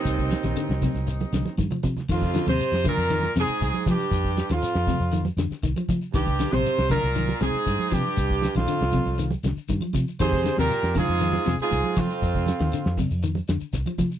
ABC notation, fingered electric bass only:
X:1
M:4/4
L:1/16
Q:1/4=118
K:Fdor
V:1 name="Fingered electric bass" clef=bass
C,,3 B,,, z C,,2 C,,3 C,, z G,, z C, z | F,,3 E,, z F,,2 F,,3 F,, z C,, z F, z | F,,3 E,, z F,,2 F,,3 F,, z C,, z F, z | C,,3 B,,, z C,,2 C,,3 C,, z G,, z C, z |
C,,3 B,,, z C,,2 C,,3 C,, z G,, z C, z | F,,3 E,, z F,,2 F,,3 F,, z C,, z F, z | F,,3 E,, z F,,2 F,,3 F,, z C,, z F, z |]